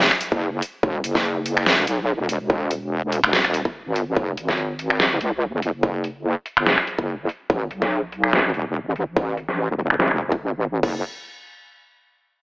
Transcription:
0.11 finger snap
0.21 closed hi-hat
0.32 F#1, kick
0.62 closed hi-hat
0.83 E1, kick
1.04 F#1, closed hi-hat
1.15 kick, snare
1.46 closed hi-hat
1.57 finger snap
1.66 G#1, snare
1.78 E1
1.87 B1, closed hi-hat
2.19 E1
2.29 closed hi-hat
2.40 E1
2.50 kick
2.71 closed hi-hat
3.03 E1
3.12 closed hi-hat
3.24 E1, finger snap
3.33 snare
3.44 finger snap
3.54 closed hi-hat
3.65 kick
3.86 G#1
3.96 closed hi-hat
4.17 F#1, kick
4.37 G#1, closed hi-hat
4.49 kick, snare
4.79 closed hi-hat
4.90 finger snap
5.00 A1, snare
5.11 F#1
5.21 C#2, closed hi-hat
5.53 F#1
5.62 closed hi-hat
5.74 F#1
5.83 kick
6.04 closed hi-hat
6.46 closed hi-hat
6.57 F#1, finger snap
6.67 snare
6.78 finger snap
6.87 closed hi-hat
6.99 F#1, kick
7.29 closed hi-hat
7.50 A1, kick
7.71 B1, closed hi-hat
7.82 kick, snare
8.12 closed hi-hat
8.24 finger snap
8.33 C#2, snare
8.44 A1
8.54 E1, closed hi-hat
8.86 A1
8.96 closed hi-hat
9.07 A1
9.17 kick
9.37 closed hi-hat
9.49 snare
9.69 E1
9.79 closed hi-hat
9.90 finger snap, closed hi-hat
10.00 snare
10.11 E1, finger snap
10.21 closed hi-hat
10.32 kick
10.42 A1
10.62 closed hi-hat
10.83 F#1, kick, crash

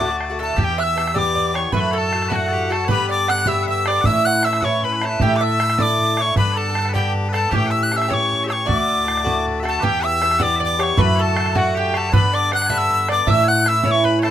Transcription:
Already playing: D2 D5 D6
0.00 D3 A3 F#4, bodhran
0.10 D3 A3 F#4
0.21 bodhran
0.30 D3 A3 F#4
0.39 A2 D3 A3 F#4 A4 A5
0.56 E2 G2 E3 B3 G4, bodhran
0.60 A5
0.64 G5
0.78 E5 F#6
0.83 E6
0.95 G2 E3 B3 G4, bodhran
1.07 bodhran
1.14 G2 E3 B3 G4 D5, bodhran
1.18 D6
1.35 D5, bodhran
1.54 E3 B3 G4 C#5 C#6, bodhran
1.72 F#2 A2 D3 A3 F#4 B4 C#6, bodhran
1.80 B5
1.92 A4 C#5 B5
1.96 A4 A5
2.12 A2 D3 A3 F#4, bodhran
2.22 bodhran
2.29 A2 D3 A3 F#4 B4 A5, bodhran
2.33 F#4 F#5
2.48 A4
2.52 G4, bodhran
2.70 D3 A3 F#4 A4 A5, bodhran
2.85 G2 B4 C#5, bodhran
2.90 G2 D3 B3 G4 B5
3.09 D5 D6
3.28 G2 D3 B3 G4 F#5 F#6, bodhran
3.38 bodhran
3.46 G2 D3 B3 G4 E5 E6, bodhran
3.63 E5 F#5, bodhran
3.68 E5 E6
3.86 D3 B3 G4 D5 D6, bodhran
4.01 A2 F#5, bodhran
4.05 A2 E3 C#4 E4 E5 E6
4.25 F#5 F#6
4.43 A2 E3 C#4 E4 E5 E6, bodhran
4.53 bodhran
4.61 E3 C#4 E4 C#5 F#5 C#6, bodhran
4.65 A2
4.83 B4 B5, bodhran
4.93 B4 C#5
5.02 E3 C#4 E4 A4 A5, bodhran
5.06 B4 C#5
5.20 A2 D3 A3 E4 G4 G5, bodhran
5.36 F#5 D6
5.41 E5 E6
5.60 A2 D3 A3 E4, bodhran
5.70 bodhran
5.79 A2 D3 A3 E4 D5 D6, bodhran
5.99 bodhran
6.17 D3 A3 E4 C#5, bodhran
6.22 C#6
6.36 G2 D3 B3 D4 B4 B5, bodhran
6.53 A4 C#5
6.57 A4 A5
6.69 A4
6.74 G2 D3 B3 D4, bodhran
6.82 A4, bodhran
6.90 G4 B4
6.94 G2 D3 B3 D4 G4 G5, bodhran
7.15 bodhran
7.29 D4 B4
7.33 D3 B3 A4 A5, bodhran
7.51 A2 E3 C#4 G4 A5, bodhran
7.56 G5
7.67 F#5
7.71 E5 E6
7.83 F#6
7.91 A2 E3 C#4 G4 F#5, bodhran
7.96 E5 E6
8.02 bodhran
8.08 A2 E3 C#4 G4 C#5 E6, bodhran
8.14 C#6
8.33 bodhran
8.44 G4 E5
8.48 E3 C#4 C#5 E6, bodhran
8.52 C#6
8.65 D2 A2 D3 A3 F#4 D5 D6, bodhran
9.05 A2 D3 A3 F#4, bodhran
9.17 bodhran
9.24 A2 D3 A3 F#4, bodhran
9.47 bodhran
9.60 A3 F#4 A4 E5
9.65 D3 A5, bodhran
9.80 E2 G2 E3 B3 G4 B4, bodhran
9.84 G5
10.00 E5 F#5
10.06 E6
10.21 G2 E3 B3 G4 E5, bodhran
10.31 bodhran
10.39 G2 E3 B3 G4 D5 F#5, bodhran
10.43 D6
10.56 D5 E5
10.61 D6, bodhran
10.79 E3 B3 G4 C#5, bodhran
10.83 C#6
10.97 F#2 A2 D3 A3 F#4 B4, bodhran
11.01 B5
11.16 A4 C#5
11.20 A4 A5
11.36 A2 D3 A3 F#4, bodhran
11.46 bodhran
11.55 A2 D3 A3 F#4 F#5, bodhran
11.75 G4, bodhran
11.79 G5
11.94 D3 A3 F#4 A4 A5, bodhran
12.10 G2 D3 B3 D4 B4 C#5, bodhran
12.15 B5
12.33 D5 D6
12.51 G2 D3 B3 D4 F#5 F#6, bodhran
12.62 bodhran
12.66 D4 E5 G#5, bodhran
12.71 G2 D3 B3 F#6
12.78 E6
12.90 bodhran
13.08 D3 B3 D4 D5 D6, bodhran
13.27 A2 E3 C#4 E4 E5 E6, bodhran
13.44 F#5 G#5
13.48 F#5 F#6
13.65 E3 C#4 E5 G#5 E6, bodhran
13.69 E4
13.84 A2 E3 C#4 E4 C#5 E6, bodhran
13.91 C#6
14.04 B4 B5, bodhran
14.19 A4 C#5 A5, bodhran
14.24 E3 C#4 E4

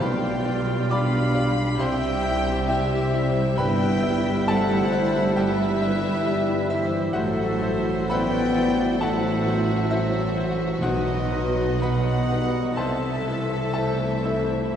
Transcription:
Already playing: G3 G4
0.00 B1 B2 G3 B3 F4 B4 D5 F5 G5 B5
0.44 G3 F4 D5
0.90 G3 D4 F4 D5 F5 B5 D6
1.34 G3 F4 D5
1.78 C2 C3 G3 C4 E4 G4 C5 E5 G5 C6
2.22 G3 E4 E5
2.67 G3 E4 G4 C5 E5 G5
3.12 G3 E4 E5
3.57 G1 G2 G3 B3 E4 B4 E5 G5 B5
4.02 G3 E4 E5
4.47 G3 A3 E4 A4 C5 E5 F#5 A5
4.92 G3 E4 E5
5.36 G2 G3 G4 B4 E5 G5
5.81 G3 E4 E5
6.26 G3 E4 E5
6.69 E3 G3 E4 G4 C5 E5
7.13 A1 A2 F#3 E4 F#4 A4 C5 E5 F#5
7.62 F#3 E4 C5
8.09 F#3 B3 E4 B4 C5 D5 F#5 G5 B5
8.57 F#3 E4 C5
9.01 A2 F#3 A3 A4 C5 E5 F#5 A5
9.47 F#3 E4 C5
9.89 E3 F#3 E4 A4 C5 E5
10.35 F#3 E4 C5
10.81 B1 B2 F#3 D#4 F#4 B4 D#5 F#5
11.31 F#3 D#4 B4
11.80 F#3 B3 D#4 B4 D#5 F#5 B5
12.30 F#3 G3 D#4 B4
12.76 C2 C3 E3 A3 C4 E4 A4 C5 E5 A5 C6
13.27 A3 E4 E5
13.74 A3 E4 A4 C5 E5 A5
14.25 A3 E4 E5

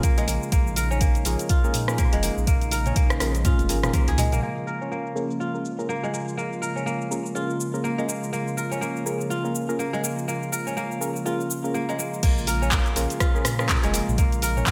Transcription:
Already playing: C#3 F3 G#3 A#3 C#4 F4 G#4 A#4
0.03 A#3, kick, closed hi-hat, shaker
0.18 G#3 A#3 C#4 F4 G#4 A#4, closed hi-hat, shaker
0.27 A#1 A#3, open hi-hat, shaker
0.43 shaker
0.52 A#1 A#3 D#4, kick, closed hi-hat, shaker
0.67 shaker
0.76 A#4, open hi-hat, shaker
0.91 C#4, shaker
1.01 A#3, kick, closed hi-hat, shaker
1.15 closed hi-hat, shaker
1.25 A#1 A#3 C#4 F4 G#4 A#4, open hi-hat, shaker
1.39 closed hi-hat, shaker
1.49 F4, kick, closed hi-hat, shaker
1.64 A#3 C#4 F4 G#4 A#4, shaker
1.74 A#2, open hi-hat, shaker
1.88 A#3 C#4 F4 G#4 A#4, cross-stick, shaker
1.98 A#3, kick, closed hi-hat, shaker
2.13 F1 G#3, closed hi-hat, shaker
2.23 A#3, open hi-hat, shaker
2.37 A#1, shaker
2.47 A#3, kick, closed hi-hat, shaker
2.62 closed hi-hat, shaker
2.71 A#4, open hi-hat, shaker
2.86 C#4, closed hi-hat, mid tom, shaker
2.96 A#3, kick, closed hi-hat, shaker
3.10 cross-stick, closed hi-hat, shaker
3.20 A#1 A#3 C#4 F4 G#4 A#4, cross-stick, open hi-hat, shaker
3.35 closed hi-hat, shaker
3.45 A#2 A#3 C#4 F4 G#4 A#4, kick, closed hi-hat, mid tom, high tom, shaker
3.59 F1, closed hi-hat, high tom, shaker
3.69 G#1 A#3 C#4 F4 G#4 A#4, open hi-hat, shaker
3.83 F1 A#3 C#4 F4 G#4 A#4, cross-stick, closed hi-hat, mid tom, shaker
3.94 A#3, kick, closed hi-hat, mid tom, shaker
4.08 C#2 G#4, closed hi-hat, shaker
4.18 G#3, mid tom, open hi-hat, shaker
4.32 A#1 A#3, closed hi-hat, mid tom, shaker
4.43 C#3 F3 G#3 A#3 F4, shaker
4.57 shaker
4.67 A#4, shaker
4.81 C#4, shaker
4.92 A#3, shaker
5.06 shaker
5.16 A#3 C#4 F4 G#4 A#4, shaker
5.31 shaker
5.40 F4, shaker
5.54 A#3 C#4 F4 G#4 A#4, shaker
5.65 shaker
5.79 A#3 C#4 F4 G#4 A#4, shaker
5.89 A#3, shaker
6.03 G#3, shaker
6.13 A#3, shaker
6.28 shaker
6.37 A#3, shaker
6.53 shaker
6.62 A#4, shaker
6.76 C#4, shaker
6.86 A#3, shaker
7.01 shaker
7.11 A#3 C#4 F4 G#4 A#4, shaker
7.26 shaker
7.35 A#3 C#4 F4 G#4 A#4, shaker
7.50 shaker
7.60 shaker
7.74 A#3 C#4 F4 G#4 A#4, shaker
7.84 A#3, shaker
7.98 G#3 A#3 C#4 F4 G#4 A#4, shaker
8.08 A#3, shaker
8.23 shaker
8.33 A#3, shaker
8.48 shaker
8.57 A#4, shaker
8.71 C#4, shaker
8.81 A#3, shaker
8.96 shaker
9.06 A#3 C#4 F4 G#4 A#4, shaker
9.21 shaker
9.30 F4, shaker
9.44 A#3 C#4 F4 G#4 A#4, shaker
9.55 shaker
9.69 A#3 C#4 F4 G#4 A#4, shaker
9.79 A#3, shaker
9.93 G#3, shaker
10.03 A#3, shaker
10.18 shaker
10.28 A#3, shaker
10.43 shaker
10.52 A#4, shaker
10.67 C#4, shaker
10.77 A#3, shaker
10.91 shaker
11.01 A#3 C#4 F4 G#4 A#4, shaker
11.16 shaker
11.25 A#3 C#4 F4 G#4 A#4, shaker
11.41 shaker
11.50 shaker
11.64 A#3 C#4 F4 G#4 A#4, shaker
11.74 A#3, shaker
11.88 G#3 A#3 C#4 F4 G#4 A#4, shaker
11.99 A#3, shaker
12.14 shaker
12.23 A#1 C#3 F3 G#3 A#3 F4, kick, closed hi-hat, crash, shaker
12.38 shaker
12.47 A#4, open hi-hat, shaker
12.62 C#4, shaker
12.72 A#3, kick, clap, closed hi-hat, shaker
12.86 closed hi-hat, shaker
12.96 A#1 A#3 C#4 F4 G#4 A#4, open hi-hat, shaker
13.10 closed hi-hat, shaker
13.20 F4, kick, cross-stick, closed hi-hat, shaker
13.35 A#3 C#4 F4 G#4 A#4, shaker
13.45 A#2, cross-stick, open hi-hat, shaker
13.59 A#3 C#4 F4 G#4 A#4, cross-stick, shaker
13.69 A#3, kick, clap, closed hi-hat, shaker
13.84 F1 G#3, closed hi-hat, shaker
13.94 A#3, open hi-hat, shaker
14.08 A#1, mid tom, shaker
14.18 A#3, kick, closed hi-hat, shaker
14.32 closed hi-hat, shaker
14.42 A#4, open hi-hat, shaker
14.57 C#4, mid tom, shaker
14.67 A#3, kick, clap, closed hi-hat, shaker

